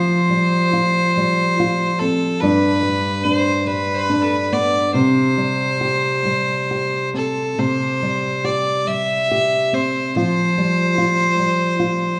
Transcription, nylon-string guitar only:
Already playing: F3 G3 C4 F4
0.30 G3
0.73 F4
1.17 G3
1.60 F4
2.01 C4
2.42 G2 D4
2.83 G3
3.25 D4
3.67 G3
4.09 D4
4.52 B3
4.94 C3 G4
5.38 G3
5.81 G4
6.25 G3
6.71 G4
7.14 C4
7.58 C3 G4
8.03 G3
8.44 G4
8.88 G3
9.31 G4
9.73 C4
10.16 F3 F4
10.58 G3
10.98 F4
11.39 G3
11.80 F4

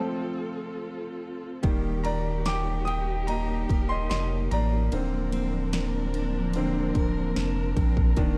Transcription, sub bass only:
1.64 D#1
3.70 D#1
4.10 F1
4.51 A1
4.92 D1
6.95 D1
7.36 F1
7.77 A#1
8.17 D#1

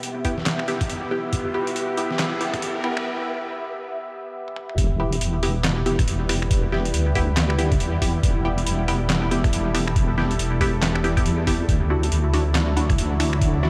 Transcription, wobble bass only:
4.78 E1
5.21 E1
6.08 E1
6.94 D2
7.80 E2
8.23 E1
8.67 E1
9.53 E1
10.39 E1
11.26 E2
11.69 D2
12.12 D2
12.98 D2

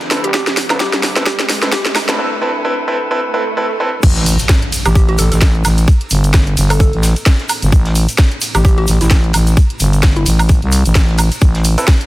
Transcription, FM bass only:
0.24 A1
0.70 C2
2.09 A1
4.03 A1
4.85 A1
5.19 A1
5.32 A1
5.65 A1
6.11 G1
6.57 G1
6.93 A1
7.62 G1
8.55 A1
8.88 A1
9.01 A1
9.34 A1
9.80 G1
10.26 A1
10.62 C2
10.85 A1
11.42 A1

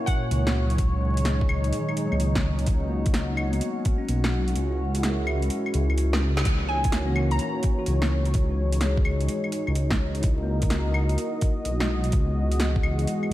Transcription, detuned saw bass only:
0.31 C#2
0.79 C#2
2.12 C#2
2.68 C#2
4.09 B1
4.56 C#2
5.75 C#2
6.46 C#2
7.88 C#2
8.35 C#2
9.68 C#2
10.24 C#2
11.66 B1
12.13 C#2

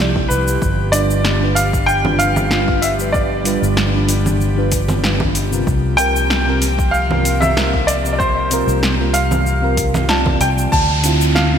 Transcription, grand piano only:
0.29 B4
0.92 D5
1.55 F5
1.86 G5
2.19 F5
2.82 E5
3.12 D5
5.97 G5
6.91 F5
7.41 E5
7.87 D5
8.13 D5
8.18 C5
9.14 F5
10.09 A5
10.41 G5
10.72 A5
11.35 F5

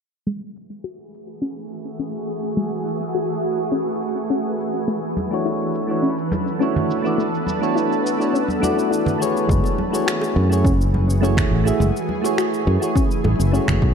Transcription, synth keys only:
5.31 A3 D4 E4 F#4 C#5
5.87 A3 D4 E4 F#4 C#5
6.59 A3 D4 E4 F#4 C#5
7.02 A3 D4 E4 F#4
7.07 D5
7.59 A3 D4 E4 F#4 C#5
8.18 A3 D4 E4 F#4 C#5
8.60 A3 D4 E4 F#4
8.64 D5
9.18 A3 E4 F#4 G#4 C#5
9.91 A3 E4 F#4 G#4
9.95 C#5
10.49 A3 E4 F#4 G#4 C#5
11.21 A3 E4 F#4 G#4 C#5
11.64 A3 E4 F#4 G#4 E5
12.22 A3 E4 F#4 G#4 C#5
12.80 A3 E4 F#4 G#4 C#5
13.52 A3 E4 F#4 G#4 C#5

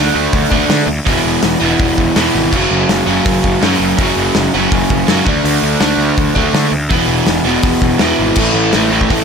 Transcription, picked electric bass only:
0.15 D2
0.33 D2
0.51 D2
0.69 D3
0.87 D2
1.07 E1
1.25 E1
1.43 E1
1.61 E1
1.80 E1
1.98 E1
2.16 E2
2.35 G#1
2.53 F#1
2.71 F#1
2.89 F#1
3.07 F#1
3.26 F#1
3.44 F#1
3.63 F#2
3.80 F#1
3.98 F#1
4.17 F#1
4.36 F#1
4.55 F#1
4.72 F#1
4.90 F#1
5.09 F#2
5.27 D2
5.44 D2
5.63 D2
5.81 D2
5.97 D2
6.17 D2
6.35 D2
6.54 D3
6.72 D2
6.90 E1
7.08 E1
7.27 E1
7.45 E1
7.63 E1
7.82 E1
8.01 E2
8.19 G#1
8.37 A1
8.54 A1
8.74 A1
8.92 A1
9.10 A1

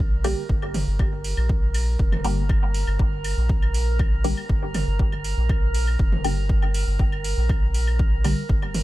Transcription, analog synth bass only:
Already playing: A#1
0.49 G1
0.87 G1
1.37 A#1
1.99 F1
2.24 G1
2.87 G1
2.99 G1
3.37 A#1
4.49 G1
4.87 G1
5.37 A#1
5.99 F1
6.24 G1
6.87 G1
6.99 G1
7.37 A#1
8.49 G1

